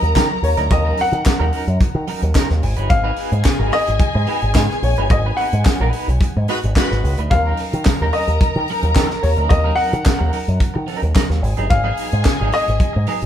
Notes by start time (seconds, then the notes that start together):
Already playing: A#4 D#5 A#5
0.02 D#2, closed hi-hat
0.16 D#3 F#3 C#4 D#4 A#4, kick, snare, clap, closed hi-hat, tambourine
0.30 muted clean electric guitar stroke
0.42 D#2 C#5, muted clean electric guitar stroke, open hi-hat
0.57 D2 F#3 C#4 D#4 A#4, closed hi-hat
0.70 D#2 D#5, muted clean electric guitar stroke, kick, closed hi-hat
0.85 F#3 C#4 D#4 A#4
0.97 F#3 C#4 D#4 A#4 F#5, open hi-hat
1.12 D#3, muted clean electric guitar stroke, closed hi-hat
1.25 muted clean electric guitar stroke, kick, snare, clap, closed hi-hat, tambourine
1.40 D#2 F#3 C#4 D#4 A#4
1.52 F#3 C#4 D#4 A#4, open hi-hat
1.67 F#2, muted clean electric guitar stroke, closed hi-hat
1.81 muted picked electric bass stroke, kick, closed hi-hat
1.95 D#3, muted clean electric guitar stroke
2.07 F#3 C#4 D#4 A#4, open hi-hat
2.22 D#2, muted clean electric guitar stroke, closed hi-hat
2.34 F#3 C#4 D#4 A#4, kick, snare, clap, closed hi-hat, tambourine
2.50 D#2, muted clean electric guitar stroke, snare
2.63 G#1 G#4 G#5, muted clean electric guitar stroke, open hi-hat
2.76 G1 B3 D#4 F#4 B4, closed hi-hat
2.90 G#1 F5, muted clean electric guitar stroke, kick, closed hi-hat
3.04 B3 D#4 F#4 B4
3.16 B3 D#4 F#4 B4, open hi-hat
3.32 G#2, closed hi-hat
3.44 muted clean electric guitar stroke, kick, snare, clap, closed hi-hat, tambourine
3.59 G#1 B3 D#4 F#4 B4
3.72 B3 D#4 F#4 B4 D#5, open hi-hat
3.87 G#1, muted clean electric guitar stroke, closed hi-hat
4.00 muted picked electric bass stroke, kick, closed hi-hat
4.15 G#2, muted clean electric guitar stroke
4.27 B3 D#4 F#4 B4, open hi-hat
4.42 G#1, muted clean electric guitar stroke, closed hi-hat
4.54 G#2 B3 D#4 F#4 B4, kick, snare, clap, closed hi-hat, tambourine
4.70 muted clean electric guitar stroke, snare
4.82 A#1 C#5, muted clean electric guitar stroke, open hi-hat
4.96 G1 B3 D#4 F#4 B4, closed hi-hat
5.10 G#1 D#5, kick, closed hi-hat
5.26 B3 D#4 F#4 B4
5.37 B3 D#4 F#5, open hi-hat
5.41 F#4 B4
5.53 G#2, closed hi-hat
5.65 muted clean electric guitar stroke, kick, snare, clap, closed hi-hat, tambourine
5.80 A#1 B3 D#4 F#4 B4
5.93 B3 D#4 F#4 B4, open hi-hat
6.08 B1, muted clean electric guitar stroke, closed hi-hat
6.21 muted picked electric bass stroke, kick, closed hi-hat
6.36 G#2, muted clean electric guitar stroke
6.48 G#3 B3 D#4 F#4 B4, open hi-hat
6.63 G#1, muted clean electric guitar stroke, closed hi-hat
6.76 G#3 B3 D#4 F#4 B4, kick, snare, clap, closed hi-hat, tambourine
6.91 G#1, muted clean electric guitar stroke, snare
7.04 C#2, muted clean electric guitar stroke, open hi-hat
7.17 D2 B3 D#4 F#4 B4, closed hi-hat
7.30 D#2 A#4 F5 A#5, muted clean electric guitar stroke, kick, closed hi-hat
7.47 F#3 C#4 D#4 A#4
7.57 F#3 C#4 D#4 A#4, open hi-hat
7.73 D#3, muted clean electric guitar stroke, closed hi-hat
7.85 muted clean electric guitar stroke, kick, snare, clap, closed hi-hat, tambourine
8.01 D#2 F#3 C#4 D#4 A#4
8.12 F#3 C#4 D#5, open hi-hat
8.17 D#4 A#4
8.27 D#2, muted clean electric guitar stroke, closed hi-hat
8.41 muted picked electric bass stroke, kick, closed hi-hat
8.56 D#3, muted clean electric guitar stroke
8.68 F#3 C#4 D#4, open hi-hat
8.72 A#4
8.83 D#2, muted clean electric guitar stroke, closed hi-hat
8.95 D#3 F#3 C#4 D#4 A#4, kick, snare, clap, closed hi-hat, tambourine
9.11 muted clean electric guitar stroke, snare
9.23 D#2 C#5, muted clean electric guitar stroke, open hi-hat
9.36 D2 C#4 D#4 A#4, closed hi-hat
9.40 F#3
9.49 D#2 D#5, muted clean electric guitar stroke, kick, closed hi-hat
9.64 F#3 C#4 D#4 A#4
9.76 F#3 C#4 D#4 F#5, open hi-hat
9.80 A#4
9.92 D#3, muted clean electric guitar stroke, closed hi-hat
10.05 muted clean electric guitar stroke, kick, snare, clap, closed hi-hat, tambourine
10.19 D#2 F#3 C#4 D#4 A#4
10.32 F#3 C#4 D#4 A#4, open hi-hat
10.47 F#2, muted clean electric guitar stroke, closed hi-hat
10.60 muted picked electric bass stroke, kick, closed hi-hat
10.74 D#3, muted clean electric guitar stroke
10.87 F#3 C#4 D#4 A#4, open hi-hat
11.02 D#2, muted clean electric guitar stroke, closed hi-hat
11.15 F#3 C#4 D#4 A#4, kick, snare, clap, closed hi-hat, tambourine
11.29 D#2, muted clean electric guitar stroke, snare
11.42 G#1 G#4 G#5, muted clean electric guitar stroke, open hi-hat
11.57 G1 F#3 B3 D#4 G#4, closed hi-hat
11.69 G#1 F5, muted clean electric guitar stroke, kick, closed hi-hat
11.84 F#3 B3 D#4 G#4
11.97 F#3 B3 D#4 G#4, open hi-hat
12.11 G#2, muted clean electric guitar stroke, closed hi-hat
12.25 muted clean electric guitar stroke, kick, snare, clap, closed hi-hat, tambourine
12.40 G#1 F#3 B3 D#4 G#4
12.52 F#3 B3 D#4 G#4 D#5, open hi-hat
12.66 G#1, muted clean electric guitar stroke, closed hi-hat
12.80 muted picked electric bass stroke, kick, closed hi-hat
12.93 G#2, muted clean electric guitar stroke
13.06 F#3 B3 D#4 G#4, open hi-hat
13.21 G#1, closed hi-hat